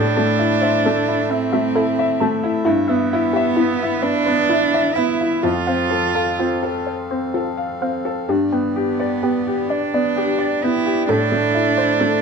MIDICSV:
0, 0, Header, 1, 5, 480
1, 0, Start_track
1, 0, Key_signature, 0, "minor"
1, 0, Tempo, 911854
1, 1400, Time_signature, 6, 3, 24, 8
1, 2368, Tempo, 947867
1, 4768, Tempo, 921659
1, 6320, End_track
2, 0, Start_track
2, 0, Title_t, "Synth pluck"
2, 0, Program_c, 0, 84
2, 88, Note_on_c, 0, 81, 57
2, 160, Note_off_c, 0, 81, 0
2, 324, Note_on_c, 0, 72, 58
2, 397, Note_off_c, 0, 72, 0
2, 449, Note_on_c, 0, 69, 77
2, 520, Note_off_c, 0, 69, 0
2, 689, Note_on_c, 0, 76, 62
2, 759, Note_off_c, 0, 76, 0
2, 803, Note_on_c, 0, 76, 59
2, 874, Note_off_c, 0, 76, 0
2, 924, Note_on_c, 0, 69, 85
2, 994, Note_off_c, 0, 69, 0
2, 1160, Note_on_c, 0, 81, 68
2, 1232, Note_off_c, 0, 81, 0
2, 1396, Note_on_c, 0, 64, 84
2, 1469, Note_off_c, 0, 64, 0
2, 1515, Note_on_c, 0, 76, 63
2, 1588, Note_off_c, 0, 76, 0
2, 1754, Note_on_c, 0, 67, 63
2, 1828, Note_off_c, 0, 67, 0
2, 1877, Note_on_c, 0, 64, 81
2, 1951, Note_off_c, 0, 64, 0
2, 2119, Note_on_c, 0, 71, 63
2, 2193, Note_off_c, 0, 71, 0
2, 2244, Note_on_c, 0, 71, 61
2, 2318, Note_off_c, 0, 71, 0
2, 2366, Note_on_c, 0, 64, 91
2, 2437, Note_off_c, 0, 64, 0
2, 2601, Note_on_c, 0, 76, 60
2, 2674, Note_off_c, 0, 76, 0
2, 2840, Note_on_c, 0, 65, 80
2, 2914, Note_off_c, 0, 65, 0
2, 2962, Note_on_c, 0, 77, 52
2, 3036, Note_off_c, 0, 77, 0
2, 3205, Note_on_c, 0, 69, 59
2, 3279, Note_off_c, 0, 69, 0
2, 3328, Note_on_c, 0, 65, 68
2, 3401, Note_off_c, 0, 65, 0
2, 3567, Note_on_c, 0, 72, 60
2, 3641, Note_off_c, 0, 72, 0
2, 3690, Note_on_c, 0, 72, 52
2, 3763, Note_off_c, 0, 72, 0
2, 3808, Note_on_c, 0, 65, 80
2, 3881, Note_off_c, 0, 65, 0
2, 4050, Note_on_c, 0, 77, 55
2, 4123, Note_off_c, 0, 77, 0
2, 4289, Note_on_c, 0, 67, 73
2, 4360, Note_off_c, 0, 67, 0
2, 4407, Note_on_c, 0, 79, 54
2, 4479, Note_off_c, 0, 79, 0
2, 4648, Note_on_c, 0, 71, 49
2, 4719, Note_off_c, 0, 71, 0
2, 4764, Note_on_c, 0, 67, 73
2, 4838, Note_off_c, 0, 67, 0
2, 5010, Note_on_c, 0, 74, 57
2, 5083, Note_off_c, 0, 74, 0
2, 5135, Note_on_c, 0, 74, 54
2, 5207, Note_off_c, 0, 74, 0
2, 5258, Note_on_c, 0, 67, 77
2, 5328, Note_off_c, 0, 67, 0
2, 5498, Note_on_c, 0, 79, 56
2, 5569, Note_off_c, 0, 79, 0
2, 5732, Note_on_c, 0, 69, 83
2, 5804, Note_off_c, 0, 69, 0
2, 5855, Note_on_c, 0, 81, 55
2, 5925, Note_off_c, 0, 81, 0
2, 6090, Note_on_c, 0, 72, 56
2, 6160, Note_off_c, 0, 72, 0
2, 6206, Note_on_c, 0, 69, 75
2, 6277, Note_off_c, 0, 69, 0
2, 6320, End_track
3, 0, Start_track
3, 0, Title_t, "Grand piano"
3, 0, Program_c, 1, 0
3, 0, Note_on_c, 1, 45, 59
3, 69, Control_c, 1, 64, 127
3, 90, Note_on_c, 1, 57, 49
3, 206, Note_on_c, 1, 64, 52
3, 282, Note_off_c, 1, 57, 0
3, 329, Note_on_c, 1, 76, 51
3, 399, Note_off_c, 1, 64, 0
3, 453, Note_on_c, 1, 57, 54
3, 520, Note_off_c, 1, 76, 0
3, 570, Note_on_c, 1, 64, 47
3, 640, Note_off_c, 1, 57, 0
3, 807, Note_on_c, 1, 57, 58
3, 917, Note_off_c, 1, 64, 0
3, 925, Note_on_c, 1, 64, 55
3, 994, Note_off_c, 1, 57, 0
3, 1047, Note_on_c, 1, 76, 55
3, 1114, Note_off_c, 1, 64, 0
3, 1165, Note_on_c, 1, 57, 60
3, 1235, Note_off_c, 1, 76, 0
3, 1282, Note_on_c, 1, 64, 57
3, 1354, Note_off_c, 1, 57, 0
3, 1383, Note_off_c, 1, 45, 0
3, 1400, Note_on_c, 1, 43, 67
3, 1401, Note_off_c, 1, 64, 0
3, 1409, Control_c, 1, 64, 0
3, 1503, Control_c, 1, 64, 127
3, 1522, Note_on_c, 1, 59, 59
3, 1648, Note_on_c, 1, 64, 62
3, 1713, Note_off_c, 1, 59, 0
3, 1769, Note_on_c, 1, 76, 60
3, 1836, Note_off_c, 1, 64, 0
3, 1893, Note_on_c, 1, 59, 60
3, 1957, Note_off_c, 1, 76, 0
3, 2015, Note_on_c, 1, 64, 50
3, 2080, Note_off_c, 1, 59, 0
3, 2252, Note_on_c, 1, 59, 54
3, 2362, Note_off_c, 1, 64, 0
3, 2370, Note_on_c, 1, 64, 55
3, 2442, Note_off_c, 1, 59, 0
3, 2491, Note_on_c, 1, 76, 53
3, 2558, Note_off_c, 1, 64, 0
3, 2607, Note_on_c, 1, 59, 50
3, 2679, Note_off_c, 1, 76, 0
3, 2728, Note_on_c, 1, 64, 46
3, 2798, Note_off_c, 1, 59, 0
3, 2824, Note_off_c, 1, 43, 0
3, 2841, Note_on_c, 1, 41, 56
3, 2846, Note_off_c, 1, 64, 0
3, 2854, Control_c, 1, 64, 0
3, 2950, Control_c, 1, 64, 127
3, 2965, Note_on_c, 1, 60, 40
3, 3079, Note_on_c, 1, 69, 39
3, 3159, Note_off_c, 1, 60, 0
3, 3206, Note_on_c, 1, 77, 42
3, 3277, Note_off_c, 1, 69, 0
3, 3328, Note_on_c, 1, 60, 38
3, 3402, Note_off_c, 1, 77, 0
3, 3446, Note_on_c, 1, 69, 36
3, 3522, Note_off_c, 1, 60, 0
3, 3689, Note_on_c, 1, 60, 34
3, 3803, Note_off_c, 1, 69, 0
3, 3811, Note_on_c, 1, 69, 33
3, 3883, Note_off_c, 1, 60, 0
3, 3925, Note_on_c, 1, 77, 35
3, 4004, Note_off_c, 1, 69, 0
3, 4047, Note_on_c, 1, 60, 36
3, 4121, Note_off_c, 1, 77, 0
3, 4167, Note_on_c, 1, 69, 37
3, 4241, Note_off_c, 1, 60, 0
3, 4269, Note_off_c, 1, 41, 0
3, 4285, Note_on_c, 1, 43, 51
3, 4288, Note_off_c, 1, 69, 0
3, 4300, Control_c, 1, 64, 0
3, 4374, Control_c, 1, 64, 127
3, 4406, Note_on_c, 1, 59, 42
3, 4526, Note_on_c, 1, 67, 42
3, 4598, Note_off_c, 1, 59, 0
3, 4645, Note_on_c, 1, 74, 38
3, 4717, Note_off_c, 1, 67, 0
3, 4761, Note_on_c, 1, 59, 36
3, 4839, Note_off_c, 1, 74, 0
3, 4888, Note_on_c, 1, 67, 37
3, 4959, Note_off_c, 1, 59, 0
3, 5132, Note_on_c, 1, 59, 41
3, 5241, Note_off_c, 1, 67, 0
3, 5249, Note_on_c, 1, 67, 39
3, 5325, Note_off_c, 1, 59, 0
3, 5365, Note_on_c, 1, 74, 43
3, 5443, Note_off_c, 1, 67, 0
3, 5495, Note_on_c, 1, 59, 47
3, 5561, Note_off_c, 1, 74, 0
3, 5611, Note_on_c, 1, 67, 48
3, 5685, Note_off_c, 1, 59, 0
3, 5708, Note_off_c, 1, 43, 0
3, 5730, Note_on_c, 1, 45, 53
3, 5731, Note_off_c, 1, 67, 0
3, 5742, Control_c, 1, 64, 0
3, 5815, Control_c, 1, 64, 127
3, 5851, Note_on_c, 1, 57, 45
3, 5971, Note_on_c, 1, 64, 44
3, 6042, Note_off_c, 1, 57, 0
3, 6088, Note_on_c, 1, 72, 48
3, 6160, Note_off_c, 1, 64, 0
3, 6210, Note_on_c, 1, 57, 46
3, 6278, Note_off_c, 1, 72, 0
3, 6320, Note_off_c, 1, 45, 0
3, 6320, Note_off_c, 1, 57, 0
3, 6320, End_track
4, 0, Start_track
4, 0, Title_t, "Harmonium"
4, 0, Program_c, 2, 20
4, 0, Note_on_c, 2, 57, 52
4, 0, Note_on_c, 2, 64, 54
4, 0, Note_on_c, 2, 76, 57
4, 1407, Note_off_c, 2, 57, 0
4, 1411, Note_on_c, 2, 59, 68
4, 2848, Note_off_c, 2, 76, 0
4, 2850, Note_off_c, 2, 59, 0
4, 2850, Note_off_c, 2, 64, 0
4, 2851, Note_on_c, 2, 77, 47
4, 2852, Note_on_c, 2, 60, 49
4, 2853, Note_on_c, 2, 69, 49
4, 4291, Note_on_c, 2, 67, 48
4, 4292, Note_on_c, 2, 74, 44
4, 4293, Note_on_c, 2, 59, 46
4, 4294, Note_off_c, 2, 77, 0
4, 4295, Note_off_c, 2, 60, 0
4, 4295, Note_off_c, 2, 69, 0
4, 5728, Note_on_c, 2, 76, 46
4, 5729, Note_on_c, 2, 57, 50
4, 5731, Note_on_c, 2, 64, 48
4, 5732, Note_off_c, 2, 67, 0
4, 5733, Note_off_c, 2, 59, 0
4, 5733, Note_off_c, 2, 74, 0
4, 6320, Note_off_c, 2, 57, 0
4, 6320, Note_off_c, 2, 64, 0
4, 6320, Note_off_c, 2, 76, 0
4, 6320, End_track
5, 0, Start_track
5, 0, Title_t, "Cello"
5, 0, Program_c, 3, 42
5, 0, Note_on_c, 3, 62, 98
5, 678, Note_on_c, 3, 60, 82
5, 686, Note_off_c, 3, 62, 0
5, 1397, Note_off_c, 3, 60, 0
5, 1637, Note_on_c, 3, 59, 89
5, 2117, Note_on_c, 3, 62, 111
5, 2125, Note_off_c, 3, 59, 0
5, 2595, Note_on_c, 3, 64, 83
5, 2603, Note_off_c, 3, 62, 0
5, 2838, Note_on_c, 3, 65, 82
5, 2845, Note_off_c, 3, 64, 0
5, 3568, Note_off_c, 3, 65, 0
5, 4524, Note_on_c, 3, 59, 61
5, 5002, Note_on_c, 3, 62, 70
5, 5010, Note_off_c, 3, 59, 0
5, 5492, Note_on_c, 3, 64, 83
5, 5500, Note_off_c, 3, 62, 0
5, 5732, Note_off_c, 3, 64, 0
5, 5734, Note_on_c, 3, 62, 101
5, 6320, Note_off_c, 3, 62, 0
5, 6320, End_track
0, 0, End_of_file